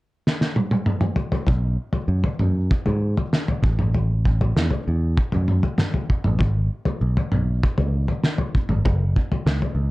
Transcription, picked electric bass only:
1.48 B1
2.08 F#2
2.40 F#2
2.86 G#2
3.63 A1
4.56 E2
4.88 E2
5.34 F#2
6.26 A1
6.40 G#1
7.01 B1
7.33 B1
7.78 C#2
8.69 G#1
8.86 F#1
9.46 C#2
9.75 C#2

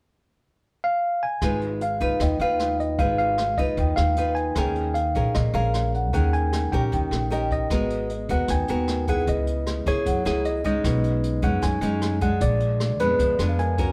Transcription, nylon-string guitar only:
1.42 G#3 D#4 F4 B4
2.01 D#4 F4 B4
2.21 D#3
2.41 D#4 F4 B4
2.99 G#3 D#4 F4 B4
3.59 D#4 F4 B4
3.78 D#3
4.17 D#4 F4 B4
4.57 D#3 C#4 G#4 A#4
5.15 C#4 G#4 A#4
5.35 A#2
5.54 C#4 G#4 A#4
6.13 D#3 C#4 G#4 A#4
6.73 C#4 G4 A#4
6.92 D#3
7.30 C#4 G4 A#4
7.71 G#3 B3 F#4 A#4
8.29 B3 F#4 A#4
8.49 D#3
8.69 B3 F#4 A#4
9.08 B3 E4 G#4
9.28 C#3
9.87 A#3 E4 G#4
10.06 F#3
10.25 A#3 E4 G#4
10.64 G#3 C#4 D#4
10.85 B2
11.42 G#3 C#4 D#4
11.62 F#3
11.82 G#3 C#4 D#4
12.21 G#3 D4
12.41 A#2
13.00 G#3 B3 D4
13.19 F3
13.39 G#3 B3 D4
13.78 C#4 F#4 A#4

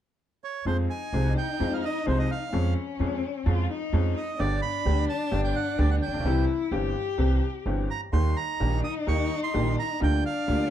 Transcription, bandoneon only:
0.44 C#5
0.67 C5
0.90 G#5
1.38 G5
1.73 F5
1.85 D#5
2.08 C5
2.19 D#5
2.31 F5
4.17 D#5
4.39 D5
4.62 B5
5.09 A5
5.44 G5
5.56 F#5
5.79 D5
5.91 F#5
6.02 G5
7.90 A#5
8.13 C6
8.37 A#5
8.84 D#6
9.08 C#6
9.43 C6
9.79 A#5
10.03 G5
10.26 F5

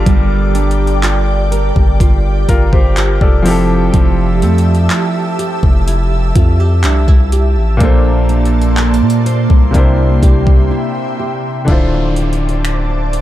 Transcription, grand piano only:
Already playing: G3 D4 F4 A4 A#4
2.49 F4 A#4
2.73 G4 C5
3.22 A4 D5
3.42 F3 C4 E4
3.48 G4 A4
7.77 A#2 A#3 D4
7.83 A4 C5
9.71 C3 A#3 D4
9.76 E4 C5
11.65 D3 D4 E4
11.70 F4 C5

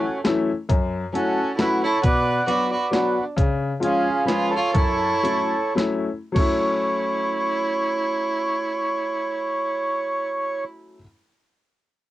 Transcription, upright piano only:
0.24 E3 F#3 A3 C#4 E4
0.69 F#2
1.12 F#3 A3 C#4 E4
1.58 F#3 A3 C#4 E4
2.03 B2
2.47 F#3 B3 D4 F#4
2.91 F#3 B3 D4 F#4
3.36 C#3
3.80 F3 G#3 C#4 F4
4.25 F3 G#3 C#4 F4
4.74 F#2
5.23 F#3 A3 C#4 E4
5.75 F#3 A3 C#4 E4
6.32 F#3 A3
6.36 C#4 E4

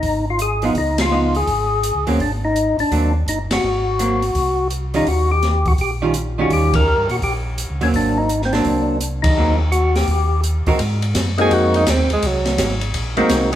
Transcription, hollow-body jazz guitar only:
0.63 F3 B3 D#4
1.11 F3 B3 D#4
2.07 F#3 A#3 C4
2.92 F#3 A#3 C4
3.99 F#3 A#3 C4
4.94 D#3 G3 C#4 F4
6.02 D#3 G3 C#4 F4
6.38 D#3 G3 C#4 F4
7.81 F#3 A#3 C4
8.53 F#3 A#3 C4
9.37 F#3 A#3 C4
10.67 G#3 C4 F#4 A#4
13.17 F#3 A#3 C4

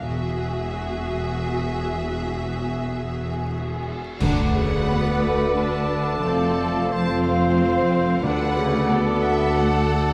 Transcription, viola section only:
0.05 F#4
4.21 D4
4.55 C#3
4.89 B3
5.23 A3
5.57 D4
6.25 C4
6.91 C4
8.24 D4
8.56 C#3
8.90 B3
9.57 A3

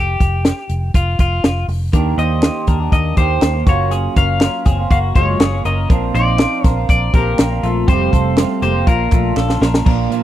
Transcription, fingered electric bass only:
Already playing: F1
0.20 F1
0.69 F1
0.94 F1
1.19 F1
1.44 F1
1.68 F1
1.93 D#2
2.18 D#2
2.67 D#2
2.92 D#2
3.17 D#2
3.42 D#2
3.66 F#1
4.16 F#1
4.66 F#1
4.90 F#1
5.16 F#1
5.40 F#1
5.65 F#1
5.90 A#1
6.14 A#1
6.64 A#1
6.89 A#1
7.14 A#1
7.39 A#1
7.63 A#1
7.88 F1
8.13 F1
8.62 F1
8.87 A#1
9.12 A#1
9.37 A#1
9.61 A#1
9.86 A#1

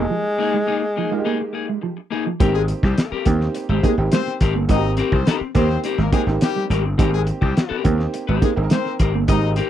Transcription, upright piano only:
Already playing: G#3 A#3 D#4 G4
1.11 G#3 A#3 D#4 F4
1.19 G4
2.40 A#3 C4 D#4 G4
3.25 A#3 C4 D#4 G4
3.83 A#3 C4 D#4 G4
3.98 A#3 C4 D#4 G4
4.68 A#3 C4 D#4 F#4
4.76 G4
5.54 A#3 C4 D#4 G4
6.12 A#3 C4 D#4 G4
6.27 A#3 C4 D#4 G4
6.98 A#3 C4 D#4 G4
7.84 A#3 C4 D#4 G4
8.41 A#3 C4 D#4 G4
8.56 A#3 C4 D#4 G#4
8.63 A#4
9.28 A#3 C4 D#4 G4

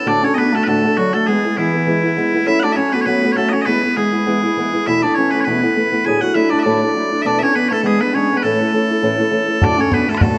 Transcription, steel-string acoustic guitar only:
0.05 D2 A2 D3 A3 D4 F#4
0.23 D3 A3 D4 F#4
0.37 D3 A3 D4 F#4
0.55 D3 A3 D4 F#4
0.67 D2 A2 D3 A3 D4 F#4
0.84 D3 A3 D4 F#4
0.97 D3 A3 D4 F#4
1.13 D3 A3 D4 F#4
1.28 E3 G#3 B3 E4
1.45 G#3 B3 E4
1.57 E3 G#3 B3 E4
1.74 G#3 B3 E4
1.87 E3 G#3 B3 E4
2.03 G#3 B3 E4
2.17 E3 G#3 B3 E4
2.34 G#3 B3 E4
2.46 F#3 A3 C#4 F#4
2.63 A3 C#4 F#4
2.76 F#3 A3 C#4 F#4
2.94 A3 C#4 F#4
3.06 F#3 A3 C#4 F#4
3.24 A3 C#4 F#4
3.35 F#3 A3 C#4 F#4
3.53 A3 C#4 F#4
3.66 E3 G#3 B3 E4
3.83 G#3 B3 E4
3.97 E3 G#3 B3 E4
4.12 G#3 B3 E4
4.26 E3 G#3 B3 E4
4.42 G#3 B3 E4
4.57 E3 G#3 B3 E4
4.73 G#3 B3 E4
4.87 E2 B2 E3 A3 B3 E4
5.04 E3 A3 B3 E4
5.17 E3 A3 B3 E4
5.34 E3 A3 B3 E4
5.46 E2 B2 E3 A3 B3 E4
5.62 E3 A3 B3 E4
5.76 E3 A3 B3 E4
5.92 E3 A3 B3 E4
6.06 D2 A2 F#3 A3 D4 E4
6.21 F#3 A3 D4 E4
6.35 F#3 A3 D4 E4
6.51 F#3 A3 D4 E4
6.65 D2 A2 F#3 A3 D4 E4
6.82 F#3 A3 D4 E4
6.95 F#3 A3 D4 E4
7.11 F#3 A3 D4 E4
7.25 E2 B2 E3 A3 B3 D4
7.41 E3 A3 B3 D4
7.55 E3 A3 B3 D4
7.71 E3 A3 B3 D4
7.83 E3 G#3 B3 D4
8.01 G#3 B3 D4
8.15 E3 G#3 B3 D4
8.31 G#3 B3 D4
8.44 A2 E3 A3 C#4 E4
8.61 A3 C#4 E4
8.73 E3 A3 C#4 E4
8.90 A3 C#4 E4
9.02 A2 E3 A3 C#4 E4
9.18 A3 C#4 E4
9.31 E3 A3 C#4 E4
9.48 A3 C#4 E4
9.61 D2 A2 D3 A3 D4 F#4
9.78 D3 A3 D4 F#4
9.92 D3 A3 D4 F#4
10.09 D3 A3 D4 F#4
10.21 D2 A2 D3 A3 D4 F#4

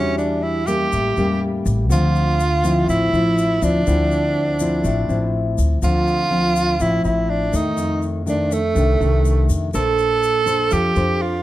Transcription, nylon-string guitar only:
Already playing: E3 G3 D4 F#4
0.67 G3 A#3 C#4
0.92 A2
1.18 G3 A#3 C#4
1.89 D3 F3 C4
2.64 F3 C4 E4
2.87 A2
3.13 F3 C4 E4
3.61 F3 C4 E4
3.87 D3 F3 C4 E4
4.60 F3 C4 E4
4.85 A2
5.08 F3 C4 E4
5.83 D3 F3 C4
6.30 F3 C4
6.79 A2 F3 C4 E4
7.52 D#3 A3
7.77 F2
8.26 D#3 A3 D4
8.75 C3 D#3 A3 D4
9.00 D#3 A3 D4
9.74 A#3 D4 A4 C5
10.46 D4 A4 C5
10.71 F3
10.96 D4 A4 C5

